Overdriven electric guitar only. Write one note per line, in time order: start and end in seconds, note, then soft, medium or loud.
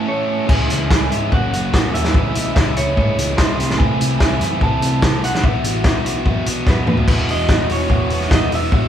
0.05 0.45 E3 medium
0.05 0.46 A3 medium
0.05 0.46 C#4 medium
0.05 0.48 A4 medium
0.46 0.89 C#3 loud
0.46 0.88 E3 medium
0.46 0.68 G#3 loud
0.46 0.69 C#4 loud
0.46 0.67 E4 loud
0.68 0.89 G#3 soft
0.68 0.91 C#4 medium
0.68 0.90 E4 medium
0.89 1.30 E3 medium
0.89 1.12 G#3 medium
0.89 1.10 C#4 medium
0.89 1.09 E4 medium
1.10 1.32 G#3 medium
1.10 1.31 C#4 medium
1.10 1.30 E4 medium
1.31 1.73 F#2 medium
1.31 1.73 C#3 medium
1.31 1.55 F#3 medium
1.31 1.53 A#3 medium
1.31 1.53 C#4 medium
1.31 1.52 F#4 medium
1.53 1.72 F#3 medium
1.53 1.73 A#3 medium
1.53 1.74 C#4 medium
1.53 1.74 F#4 medium
1.74 2.14 F#3 medium
1.74 2.14 A#3 medium
1.74 2.14 C#4 medium
1.74 2.15 F#4 medium
2.16 2.57 C#3 loud
2.16 2.56 E3 loud
2.16 2.37 G#3 medium
2.16 2.36 C#4 medium
2.16 2.36 E4 medium
2.36 2.56 G#3 medium
2.36 2.57 C#4 medium
2.36 2.58 E4 medium
2.57 2.98 E3 medium
2.57 2.79 G#3 medium
2.57 2.77 C#4 medium
2.57 2.77 E4 medium
2.77 2.97 G#3 medium
2.77 2.98 C#4 medium
2.77 3.00 E4 medium
2.98 3.39 C#3 medium
2.98 3.38 E3 medium
2.98 3.20 G#3 medium
2.98 3.19 C#4 loud
2.98 3.18 E4 loud
3.19 3.37 G#3 medium
3.19 3.39 C#4 medium
3.19 3.40 E4 medium
3.38 3.61 E3 medium
3.38 3.58 G#3 medium
3.38 3.59 C#4 medium
3.38 3.58 E4 medium
3.59 3.79 C3 medium
3.59 3.80 E3 medium
3.59 3.79 A3 medium
3.59 3.80 C4 medium
3.59 3.81 E4 medium
3.80 4.21 C3 medium
3.80 4.20 E3 loud
3.80 4.01 A3 loud
3.80 4.00 C4 medium
3.80 4.00 E4 loud
4.00 4.20 A3 medium
4.00 4.21 C4 medium
4.00 4.23 E4 medium
4.21 4.61 E3 medium
4.21 4.43 A3 medium
4.21 4.42 C4 medium
4.21 4.42 E4 medium
4.42 4.61 A3 medium
4.42 4.61 C4 medium
4.42 4.63 E4 medium
4.61 5.03 C3 medium
4.61 5.02 E3 medium
4.61 4.82 A3 loud
4.61 4.82 C4 loud
4.61 4.82 E4 medium
4.82 5.03 A3 medium
4.82 5.04 C4 medium
4.82 5.06 E4 medium
5.03 5.25 E3 medium
5.03 5.23 A3 medium
5.03 5.23 C4 medium
5.03 5.23 E4 medium
5.23 5.42 B2 medium
5.23 5.43 E3 medium
5.23 5.44 B3 medium
5.23 5.44 E4 medium
5.23 5.45 F#4 medium
5.43 5.85 B2 loud
5.43 5.82 E3 loud
5.43 5.66 B3 loud
5.43 5.65 E4 loud
5.43 5.64 F#4 loud
5.65 5.84 B3 medium
5.65 5.85 E4 medium
5.65 5.85 F#4 medium
5.83 6.25 E3 medium
5.83 6.05 B3 medium
5.83 6.04 E4 medium
5.83 6.03 F#4 medium
6.04 6.26 B3 medium
6.04 6.25 E4 medium
6.04 6.26 F#4 medium
6.25 6.67 B2 medium
6.25 6.67 E3 medium
6.25 6.48 B3 loud
6.25 6.47 E4 medium
6.25 6.45 F#4 loud
6.46 6.68 B3 medium
6.46 6.69 E4 medium
6.46 6.70 F#4 medium
6.69 7.08 E3 medium
6.69 7.08 B3 medium
6.69 7.09 E4 medium
6.69 7.09 F#4 medium
7.09 7.28 E2 medium
7.09 7.29 B2 medium
7.09 7.30 E3 loud
7.09 7.30 B3 loud
7.09 7.30 E4 loud
7.09 7.30 F#4 loud
7.29 7.49 E2 medium
7.29 7.49 B2 medium
7.29 7.50 E3 medium
7.29 7.51 B3 medium
7.29 7.50 E4 medium
7.29 7.50 F#4 medium
7.49 7.69 E2 medium
7.49 7.68 B2 medium
7.49 7.69 E3 medium
7.49 7.70 B3 medium
7.49 7.70 E4 medium
7.49 7.71 F#4 medium
7.69 7.89 E2 medium
7.69 7.89 B2 medium
7.69 7.90 E3 medium
7.69 7.90 B3 medium
7.69 7.90 E4 medium
7.69 7.92 F#4 loud
7.90 8.10 E2 medium
7.90 8.10 B2 medium
7.90 8.10 E3 medium
7.90 8.11 B3 medium
7.90 8.11 E4 loud
7.90 8.13 F#4 loud
8.11 8.30 E2 medium
8.11 8.30 B2 loud
8.11 8.31 E3 medium
8.11 8.31 B3 medium
8.11 8.32 E4 medium
8.11 8.33 F#4 medium
8.31 8.50 E2 medium
8.31 8.50 B2 medium
8.31 8.51 E3 medium
8.31 8.51 B3 medium
8.31 8.52 E4 medium
8.31 8.53 F#4 loud
8.51 8.71 E2 medium
8.51 8.72 B2 medium
8.51 8.72 E3 medium
8.51 8.73 B3 medium
8.51 8.72 E4 loud
8.51 8.73 F#4 medium
8.72 8.88 E2 loud
8.72 8.88 B2 medium
8.72 8.88 E3 loud
8.72 8.88 B3 loud
8.72 8.88 E4 loud
8.72 8.88 F#4 loud